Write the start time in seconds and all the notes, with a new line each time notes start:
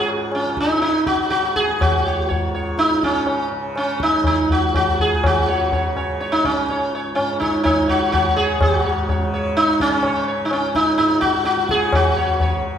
Already playing: C#2 G#2 C#3
0.08 tabla na
0.32 C#4, tabla na
0.45 C#3
0.57 D#4, tabla ke
0.82 D#4, tabla te
0.94 tabla te
1.07 C#3 F#4, tabla ke
1.19 tabla te
1.30 F#4, tabla te
1.43 tabla te
1.56 G#4, tabla ke
1.68 C#2, tabla te
1.81 F#4, tabla na, tabla ge
2.06 C#5
2.29 G#2 C#5, tabla tin, tabla ge
2.55 C#5
2.78 D#4, tabla te
2.91 C#3, tabla te
3.03 C#4, tabla ke
3.16 tabla te
3.27 tabla na
3.52 C#3
3.76 C#4, tabla na
4.00 D#4, tabla ke
4.13 C#2
4.24 D#4, tabla na, tabla ge
4.50 F#4, tabla ge
4.74 G#2 F#4, tabla na, tabla ge
4.99 G#4, tabla ge
5.24 F#4, tabla na, tabla ge
5.36 C#3
5.48 C#5
5.72 C#5, tabla tin, tabla ge
5.95 C#3 C#5, tabla na
6.20 C#5, tabla te
6.32 D#4, tabla te
6.45 C#4, tabla ke
6.57 C#2, tabla te
6.69 C#5, tabla te
6.93 C#5, tabla te
7.15 G#2 C#4, tabla na
7.40 D#4 C#5, tabla ke
7.63 D#4 C#5, tabla na, tabla ge
7.76 C#3
7.88 F#4 C#5, tabla ge
8.12 F#4 C#5, tabla na, tabla ge
8.36 C#3 G#4 C#5, tabla te
8.59 G#2 F#4, tabla na, tabla ge
8.84 C#5
9.09 C#5, tabla tin, tabla ge
9.19 C#3
9.34 C#5
9.57 D#4, tabla te
9.68 tabla te
9.80 C#3 C#4, tabla ke
9.91 tabla te
10.03 C#5, tabla na
10.28 C#5
10.40 C#2
10.45 D#4
10.51 C#4, tabla na
10.75 D#4, tabla ke
10.97 G#2 D#4, tabla te
11.10 tabla te
11.21 F#4, tabla ke
11.34 tabla te
11.45 F#4, tabla te
11.57 C#3, tabla te
11.69 G#4, tabla ke
11.81 tabla te
11.92 F#4, tabla na, tabla ge
12.16 C#3 C#5
12.40 C#5, tabla tin, tabla ge
12.73 C#2